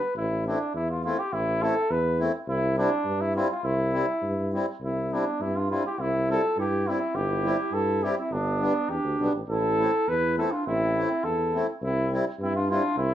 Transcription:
Already playing: B4
0.15 A1 E4
0.46 A3 C4 D4 E4
0.74 E2 E4
0.90 F4
1.05 A3 C4 E4 F4
1.19 G4
1.32 A1 E4
1.62 A3 C4 E4 A4
1.90 E2 B4
2.19 A3 C4 E4
2.47 C2 E4
2.77 G3 C4 D4 E4
3.05 G2
3.21 E4
3.35 G3 C4 E4 F4
3.52 F4
3.63 C2 E4
3.93 G3 C4 E4
4.22 G2
4.53 G3 C4 E4
4.81 C2 C4 E4
5.12 G3 B3 C4 D4 E4
5.40 G2 C4 E4
5.56 D4 F4
5.70 G3 C4 D4 E4 F4
5.86 E4 G4
5.98 C2 C4 E4
6.29 G3 C4 E4 F4 A4
6.57 G2 E4 G4
6.86 G3 C4 E4
7.14 G1 E4 G4
7.43 G3 C4 E4
7.71 G2 E4 A4
8.02 G3 C4 E4 G4
8.18 C4 E4
8.30 G1 D4
8.35 B3
8.60 G3 B3 D4
8.89 E2 D4 G4
9.04 D2
9.19 B1 G3 B3 D4
9.34 A1
9.48 A1 E4 A4
9.78 A3 C4 E4
10.08 E2 E4 B4
10.37 A3 C4 E4 F4 A4
10.52 D4 F4
10.66 A1 C4 E4
10.96 A3 C4 E4
11.24 E2 E4 A4
11.54 A3 C4 E4
11.81 C2 C4 E4
12.12 G3 C4 E4
12.39 G2 C4 E4
12.56 D4 F4
12.69 G3 C4 D4 E4 F4
12.97 C2 C4 E4

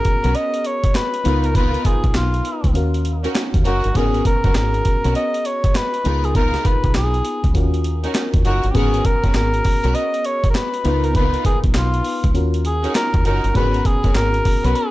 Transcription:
Already playing: B3 C#4 F#4 G#4 A#4
0.05 kick, closed hi-hat
0.24 B1 B3 C#4 F#4 A#4, closed hi-hat
0.35 D#5, closed hi-hat
0.54 closed hi-hat
0.64 C#5, closed hi-hat
0.84 kick, closed hi-hat
0.95 B4, snare, clap, closed hi-hat
1.14 closed hi-hat
1.24 C#2 B3 D#4 F4 A#4 B4, closed hi-hat
1.44 A#4, closed hi-hat
1.54 B3 D#4 F4 A#4 B4, kick, closed hi-hat
1.74 closed hi-hat
1.85 G#4, kick, closed hi-hat
2.04 B1, kick, closed hi-hat
2.15 B1 F4, snare, clap, closed hi-hat
2.34 closed hi-hat
2.45 closed hi-hat
2.64 C#2, kick, closed hi-hat
2.74 D#2 C#4 F#4 A#4 F5, closed hi-hat
2.94 closed hi-hat
3.05 closed hi-hat
3.24 C#4 D#4 F#4 A#4, closed hi-hat
3.35 snare, clap, closed hi-hat
3.54 D#2, kick, closed hi-hat
3.65 F#1 C#4 D#4 F#4 A#4, closed hi-hat
3.84 G1, closed hi-hat
3.94 G#1 B3 C#4 F#4 G#4 A#4, kick, closed hi-hat
4.14 closed hi-hat
4.25 A#4, kick, closed hi-hat
4.44 F#1 B3 C#4 F#4 A#4, kick, closed hi-hat
4.55 G#1 A#4, snare, clap, closed hi-hat
4.74 closed hi-hat
4.85 kick, closed hi-hat
5.04 B1 B3 C#4 F#4 A#4, closed hi-hat
5.15 D#5, closed hi-hat
5.34 closed hi-hat
5.45 C#5, closed hi-hat
5.64 kick, closed hi-hat
5.75 B4, snare, clap, closed hi-hat
5.94 closed hi-hat
6.04 C#2 B3 D#4 F4 G#4 A#4, closed hi-hat
6.24 G#4, closed hi-hat
6.35 B3 D#4 F4 A#4, kick, closed hi-hat
6.54 snare, closed hi-hat
6.65 B4, kick, closed hi-hat
6.84 B1, kick, closed hi-hat
6.95 B1 G#4, snare, clap, closed hi-hat
7.14 closed hi-hat
7.25 closed hi-hat
7.44 C#2, kick, closed hi-hat
7.54 D#2 C#4 F4 F#4 A#4, kick, closed hi-hat
7.74 closed hi-hat
7.84 closed hi-hat
8.04 C#4 D#4 F#4 A#4, closed hi-hat
8.15 snare, clap, closed hi-hat
8.33 D#2, kick, closed hi-hat
8.45 F#1 C#4 D#4 F#4 A#4, closed hi-hat
8.64 G1, closed hi-hat
8.70 B3 G4
8.75 G#1 B3 C#4 F#4 G#4 A#4, kick, closed hi-hat
8.94 closed hi-hat
9.05 A#4, kick, closed hi-hat
9.24 F#1 B3 C#4 F#4 A#4, kick, closed hi-hat
9.34 G#1 A#4, snare, clap, closed hi-hat
9.54 closed hi-hat
9.64 kick, open hi-hat
9.84 B1 B3 C#4 F#4 A#4, closed hi-hat
9.95 D#5, closed hi-hat
10.14 closed hi-hat
10.25 C#5, closed hi-hat
10.44 kick, closed hi-hat
10.50 A#4
10.55 B4, snare, clap, closed hi-hat
10.74 closed hi-hat
10.84 C#2 B3 D#4 F4 A#4 B4, closed hi-hat
11.04 A#4, closed hi-hat
11.15 B3 D#4 F4 A#4 B4, kick, closed hi-hat
11.34 closed hi-hat
11.45 G#4, kick, closed hi-hat
11.64 B1, kick, closed hi-hat
11.74 B1 F4, snare, clap, closed hi-hat
11.94 closed hi-hat
12.04 open hi-hat
12.24 C#2, kick, closed hi-hat
12.34 D#2 C#4 F4 F#4 A#4, closed hi-hat
12.54 closed hi-hat
12.65 G#4, closed hi-hat
12.84 C#4 D#4 F#4 A#4, closed hi-hat
12.95 A#4, snare, clap, closed hi-hat
13.14 D#2, kick, closed hi-hat
13.25 F#1 C#4 D#4 F#4 A#4, closed hi-hat
13.44 G1, closed hi-hat
13.54 G#1 B3 C#4 F#4 G#4 A#4 B4, kick, closed hi-hat
13.74 closed hi-hat
13.85 G#4, kick, closed hi-hat
14.04 F#1 B3 C#4 F#4 A#4, kick, closed hi-hat
14.15 G#1 A#4, snare, clap, closed hi-hat
14.34 closed hi-hat
14.45 kick, open hi-hat
14.64 B1 B3 C#4 F#4 A#4 B4, closed hi-hat
14.75 G#4, closed hi-hat

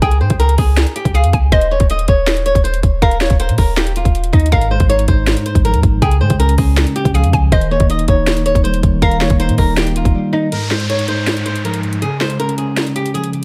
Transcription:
0.02 C#2 G#4 G5, kick, closed hi-hat
0.11 closed hi-hat
0.21 G#2 C5
0.30 C#2, kick, closed hi-hat
0.40 A#4, closed hi-hat
0.49 closed hi-hat
0.58 C#2 G#4, kick, open hi-hat
0.77 snare, closed hi-hat
0.87 closed hi-hat
0.96 G4, closed hi-hat
1.05 C#2, kick, closed hi-hat
1.14 G#4 F5, closed hi-hat
1.24 F2, closed hi-hat
1.33 C#2 G#5, kick, closed hi-hat
1.52 D#1 C5 D#5, kick, closed hi-hat
1.61 closed hi-hat
1.71 C#5
1.80 D#1, kick, closed hi-hat
1.90 D#5, closed hi-hat
1.99 closed hi-hat
2.08 D#1 C#5, kick, closed hi-hat
2.27 snare, closed hi-hat
2.37 closed hi-hat
2.46 C#5, closed hi-hat
2.55 D#1, kick, closed hi-hat
2.64 C5, closed hi-hat
2.74 closed hi-hat
2.83 D#1, kick, closed hi-hat
3.02 D#1 A#4 F5, kick, closed hi-hat
3.11 closed hi-hat
3.21 C#5, snare
3.30 D#1, kick, closed hi-hat
3.40 C5, closed hi-hat
3.49 A#2, closed hi-hat
3.58 D#1 A#4, kick, open hi-hat
3.77 G4, snare, closed hi-hat
3.87 closed hi-hat
3.96 F4, closed hi-hat
4.05 D#1, kick, closed hi-hat
4.15 closed hi-hat
4.24 closed hi-hat
4.33 D#2 D#4 D#5, kick, closed hi-hat
4.40 closed hi-hat
4.46 closed hi-hat
4.52 G#1 G#2 A#4 F5, kick, closed hi-hat
4.61 closed hi-hat
4.71 G#3 C5
4.80 G#1, kick, closed hi-hat
4.89 D#4 C#5, closed hi-hat
4.99 closed hi-hat
5.08 G#1 D#4 C5, kick, closed hi-hat
5.27 snare, closed hi-hat
5.37 closed hi-hat
5.46 C5, closed hi-hat
5.55 G#1, kick, closed hi-hat
5.65 F3 A#4, closed hi-hat
5.74 D#2, closed hi-hat
5.83 G#1 G#2, kick, closed hi-hat
6.02 C#2 C#3 G#4 G5, kick, closed hi-hat
6.11 closed hi-hat
6.21 G#2 G#3 C5
6.30 C#2, kick, closed hi-hat
6.40 C#4 A#4, closed hi-hat
6.49 closed hi-hat
6.58 C#2 C#4 G#4, kick, open hi-hat
6.77 snare, closed hi-hat
6.87 closed hi-hat
6.96 G4, closed hi-hat
7.05 C#2, kick, closed hi-hat
7.14 F3 G#4 F5, closed hi-hat
7.24 F2, closed hi-hat
7.33 C#2 C#3 G#5, kick, closed hi-hat
7.52 D#1 D#3 C5 D#5, kick, closed hi-hat
7.61 closed hi-hat
7.71 A#3 C#5
7.80 D#1, kick, closed hi-hat
7.90 D#4 D#5, closed hi-hat
7.99 closed hi-hat
8.08 D#1 D#4 C#5, kick, closed hi-hat
8.27 snare, closed hi-hat
8.37 closed hi-hat
8.46 C#5, closed hi-hat
8.55 D#1, kick, closed hi-hat
8.64 G3 C5, closed hi-hat
8.74 closed hi-hat
8.83 D#1 D#3, kick, closed hi-hat
9.02 D#1 D#3 A#4 F5, kick, closed hi-hat
9.11 closed hi-hat
9.21 A#3 C#5, snare
9.30 D#1, kick, closed hi-hat
9.40 D#4 C5, closed hi-hat
9.49 A#2, closed hi-hat
9.58 D#1 D#4 A#4, kick, open hi-hat
9.77 G4, snare, closed hi-hat
9.87 closed hi-hat
9.96 F4, closed hi-hat
10.05 D#1, kick, closed hi-hat
10.15 G3
10.33 D#3 D#4 D#5
10.52 G#2 A#4, closed hi-hat, downlifter
10.71 G#3 C5, snare
10.80 closed hi-hat
10.90 D#4 C#5, closed hi-hat
10.99 closed hi-hat
11.08 D#4 C5, closed hi-hat
11.27 snare, closed hi-hat
11.37 closed hi-hat
11.46 C5, closed hi-hat
11.56 closed hi-hat
11.65 F3 A#4, closed hi-hat
11.74 closed hi-hat
11.83 G#2, closed hi-hat
11.93 closed hi-hat
12.02 C#3 G#4, closed hi-hat
12.21 G#3 C5, snare
12.30 closed hi-hat
12.39 C#4 A#4, closed hi-hat
12.49 closed hi-hat
12.58 C#4 G#4, closed hi-hat
12.77 snare, closed hi-hat
12.87 closed hi-hat
12.96 G4, closed hi-hat
13.06 closed hi-hat
13.14 F3 G#4, closed hi-hat
13.24 closed hi-hat
13.33 C#3, closed hi-hat

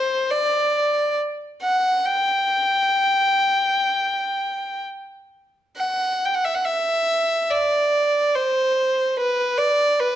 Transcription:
Already playing: C5
0.30 D5
1.61 F#5
2.05 G5
5.76 F#5
6.25 G5
6.34 F#5
6.44 E5
6.54 F#5
6.64 E5
7.50 D5
8.35 C5
9.17 B4
9.58 D5
9.99 B4

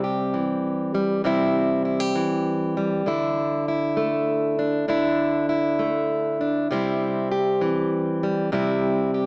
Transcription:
Already playing: C3 G3 C4
0.04 G4
0.34 E3
0.95 G3
1.24 C3 G3 C4 E4
1.85 E4
2.00 G4
2.15 E3
2.77 G3
3.06 D3 D4 E4
3.68 E4
3.97 A3
4.59 D4
4.88 D3 D4 E4
5.49 E4
5.79 A3
6.41 D4
6.71 C3 G3 C4 E4
7.32 G4
7.61 E3
8.23 G3
8.52 C3 G3 C4 E4
9.14 G4

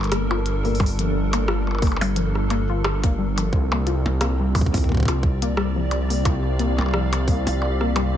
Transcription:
Already playing: G1 G3 D4 A4 A#4
0.01 percussion blips
0.03 closed hi-hat, percussion blips
0.05 percussion blips
0.07 percussion blips
0.10 A#3, cross-stick, closed hi-hat, percussion blips
0.31 F4, percussion blips
0.46 closed hi-hat
0.65 A#3, open hi-hat
0.75 open hi-hat
0.80 G3, kick, percussion blips
0.86 open hi-hat
0.99 F3, closed hi-hat
1.33 A#3, closed hi-hat, percussion blips
1.48 F4, cross-stick
1.67 percussion blips
1.71 percussion blips
1.75 percussion blips
1.78 A#3, kick, open hi-hat, percussion blips
1.82 percussion blips
1.87 percussion blips
1.92 percussion blips
1.97 percussion blips
2.01 G3, open hi-hat, percussion blips
2.16 F3, closed hi-hat
2.35 cross-stick
2.50 A#3, closed hi-hat, percussion blips
2.69 F4
2.84 cross-stick, percussion blips
3.04 A#3, kick, closed hi-hat
3.19 G3
3.38 F3, closed hi-hat, percussion blips
3.53 C2 C4, kick
3.72 A#3, percussion blips
3.87 F4, closed hi-hat
4.06 percussion blips
4.21 A#3, cross-stick, closed hi-hat, percussion blips
4.40 G3
4.47 G4
4.55 F3, kick, open hi-hat, percussion blips
4.61 kick
4.66 kick
4.74 kick, open hi-hat, percussion blips
4.78 kick
4.84 D5, kick
4.89 A#3, kick
4.92 kick
4.94 kick
4.97 kick
5.00 kick
5.03 kick
5.05 F4, kick, cross-stick, closed hi-hat, percussion blips
5.23 kick
5.42 A#3, closed hi-hat
5.57 G3, cross-stick
5.76 F3
5.87 F5
5.91 closed hi-hat, percussion blips
6.10 A#3, open hi-hat
6.25 F4, kick, closed hi-hat, percussion blips
6.59 A#3, closed hi-hat
6.79 G3, percussion blips
6.81 percussion blips
6.86 percussion blips
6.89 percussion blips
6.91 F3, cross-stick, percussion blips
7.13 closed hi-hat, percussion blips
7.28 A#3, kick, open hi-hat
7.47 F4, open hi-hat, percussion blips
7.62 percussion blips
7.81 A#3, cross-stick
7.96 G3, closed hi-hat, percussion blips

